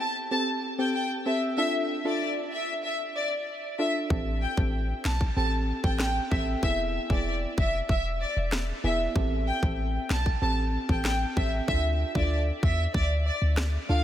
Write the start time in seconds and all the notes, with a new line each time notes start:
0.31 C4 G4 A4 A5
0.78 C4 G4 A4 G5
0.95 G5
1.26 C4 G4 A4 E5
1.57 D4 F4 A4 E5
2.05 D4 F4 A4 D5
2.52 E5
2.84 E5
3.15 D5
3.79 D4 F4 A4 E5
4.10 A1 C4 G4 A4, kick
4.42 G5
4.57 A1 C4 G4 A4, kick
5.05 B1 A5, finger snap, snare
5.21 kick
5.36 A1 C4 G4 A4 A5
5.84 A1 C4 G4 A4 G5, kick
6.00 G5, finger snap, cross-stick, snare
6.31 A1 C4 G4 A4 E5, kick
6.63 E1 B3 E4 G#4 E5, kick
7.10 E1 B3 E4 G#4 D5, kick
7.57 F1 E5, kick
7.89 E1 E5, kick
8.21 D5
8.37 E1
8.52 finger snap, cross-stick, snare
8.84 E1 B3 E4 G#4 E5
9.15 A1 C4 G4 A4, kick
9.47 G5
9.62 A1 C4 G4 A4, kick
10.10 B1 A5, finger snap, snare
10.26 kick
10.41 A1 C4 G4 A4 A5
10.89 A1 C4 G4 A4 G5, kick
11.05 G5, finger snap, cross-stick, snare
11.36 A1 C4 G4 A4 E5, kick
11.68 D2 D4 F4 A4 E5, kick
12.15 D2 D4 F4 A4 D5, kick
12.63 E2 E5, kick
12.94 D2 D5, kick
13.26 D5
13.42 D2
13.57 finger snap, cross-stick, snare
13.89 D2 D4 F4 A4 F5